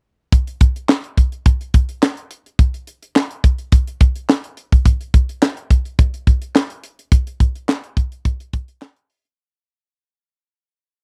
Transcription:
0.32 kick, closed hi-hat
0.47 closed hi-hat
0.61 kick, closed hi-hat
0.76 closed hi-hat
0.89 snare, clap
1.04 closed hi-hat
1.17 kick, closed hi-hat
1.32 closed hi-hat
1.46 kick, closed hi-hat
1.61 closed hi-hat
1.74 kick, closed hi-hat
1.89 closed hi-hat
2.03 snare, clap
2.17 closed hi-hat
2.31 closed hi-hat
2.46 closed hi-hat
2.59 kick, closed hi-hat
2.74 closed hi-hat
2.87 closed hi-hat
3.03 closed hi-hat
3.16 snare, clap
3.31 closed hi-hat
3.44 kick, closed hi-hat
3.58 closed hi-hat
3.72 kick, closed hi-hat
3.87 closed hi-hat
4.01 kick, closed hi-hat
4.16 closed hi-hat
4.29 snare, clap
4.44 closed hi-hat
4.57 closed hi-hat
4.72 kick, closed hi-hat
4.85 kick, closed hi-hat
5.01 closed hi-hat
5.14 kick, closed hi-hat
5.29 closed hi-hat
5.42 snare, clap
5.57 closed hi-hat
5.70 kick, closed hi-hat
5.85 closed hi-hat
5.99 kick, closed hi-hat
6.14 closed hi-hat
6.27 kick, closed hi-hat
6.42 closed hi-hat
6.56 snare, clap
6.70 closed hi-hat
6.84 closed hi-hat
6.99 closed hi-hat
7.12 kick, closed hi-hat
7.27 closed hi-hat
7.40 kick, closed hi-hat
7.56 closed hi-hat
7.69 snare, clap
7.84 closed hi-hat
7.97 kick, closed hi-hat
8.12 closed hi-hat
8.25 kick, closed hi-hat
8.40 closed hi-hat
8.53 kick, closed hi-hat
8.68 closed hi-hat
8.82 snare, clap
8.96 closed hi-hat
9.10 open hi-hat
9.25 closed hi-hat

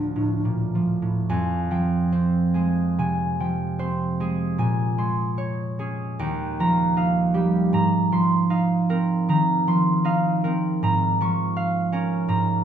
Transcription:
Already playing: D2 A2 F3 A3 D4
0.16 A2
0.45 A#2
0.75 F3
1.02 A2
1.29 F2 G#5
1.71 F3 G5
2.12 C4 C5
2.54 G#3 G#4
2.98 C3 G#5
3.40 F3 G5
3.79 C4 C5
4.20 G#3 G#4
4.58 A#2 G#5
4.98 G#3 C6
5.38 C#5
5.79 C#4 G#4
6.19 D#2 G5
6.60 F3 A#5
6.96 D#4 F5
7.34 G3 G4
7.73 G#2 A#5
8.12 F3 C6
8.50 D#4 F5
8.89 C4 A#4
9.29 D#3 A#5
9.67 F3 C6
10.05 D#4 F5
10.44 C4 A#4
10.83 G#2 A#5
11.21 F3 C#6
11.57 F5
11.92 C#4 A#4
12.28 G#2 A#5

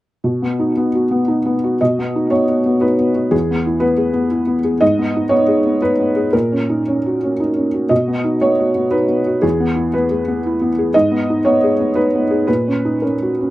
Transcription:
0.24 B2
0.42 B3
0.59 D#4
0.77 B3
0.95 F#4
1.11 B3
1.28 D#4
1.46 B3
1.64 F#4
1.81 B2 D#5
1.99 B3
2.16 D#4
2.30 B3 C#5
2.49 F#4
2.66 B3
2.81 D#4 B4
2.99 B3
3.15 F#4
3.31 E2 G#4
3.51 B3
3.66 E4
3.80 B3 B4
3.98 G#4
4.13 B3
4.31 E4
4.47 B3
4.64 G#4
4.81 G#2 D#5
4.99 B3
5.16 D#4
5.29 B3 C#5
5.48 G#4
5.66 B3
5.82 D#4 B4
5.99 B3
6.16 G#4
6.33 A#2 A#4
6.52 C#4
6.70 D#4
6.88 C#4
7.06 F#4
7.23 C#4
7.40 D#4
7.56 C#4
7.74 F#4
7.89 B2 D#5
8.08 B3
8.24 D#4
8.41 B3 C#5
8.60 F#4
8.75 B3
8.91 D#4 B4
9.08 B3
9.27 F#4
9.42 E2 G#4
9.60 B3
9.76 E4
9.94 B3 B4
10.11 G#4
10.28 B3
10.46 E4
10.61 B3
10.78 G#4
10.94 G#2 D#5
11.12 B3
11.30 D#4
11.45 B3 C#5
11.64 G#4
11.80 B3
11.95 D#4 B4
12.15 B3
12.31 G#4
12.47 A#2 B4
12.68 C#4
12.85 D#4
13.02 C#4 A#4
13.22 F#4
13.41 C#4

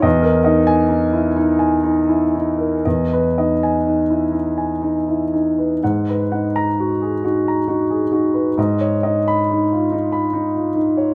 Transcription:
0.02 E2 D#5
0.22 A#4
0.44 D#4 D#5
0.67 G#5
0.89 D#4
1.13 E4
1.37 D#4
1.59 G#5
1.83 D#4
2.09 E4
2.35 D#4
2.58 A#4
2.85 E2 D#5
3.13 B4
3.38 D#4 D#5
3.63 G#5
3.87 D#4
4.10 E4
4.32 D#4
4.58 G#5
4.82 D#4
5.08 E4
5.34 D#4
5.59 B4
5.84 G#2 F#5
6.09 B4
6.32 D#4 F#5
6.56 A#5
6.80 F#4
7.02 G#4
7.24 D#4 F#4
7.48 A#5
7.68 D#4 F#4
7.90 G#4
8.12 D#4 F#4
8.34 B4
8.58 G#2 D#5
8.81 C#5
9.03 D#4 D#5
9.28 B5
9.51 D#4
9.73 F4
9.92 D#4
10.12 B5
10.33 D#4
10.55 F4
10.75 D#4
10.97 C#5

